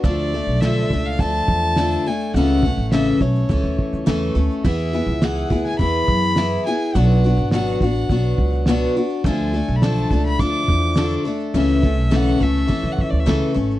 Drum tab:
SH |xx-xxxxxxx-xxx-x|xx-xxxxxxx-xxxxx|xx-xxx-xxx-xxxxx|xx-xxxxxxx-xxx-x|
SD |----o-------o---|----o-------o---|----o--o----o---|----o-------o---|
BD |o-----o-o-o-----|--o---o-o-o-----|o-----o-o-o-----|------o-o-o-----|

SH |xxxxxx-xxx-xxxxx|xx-xxx-xxx-xxxxx|
SD |----o--o----o---|----o--o----o---|
BD |o-----o-o-o-----|--o---o-o-o-----|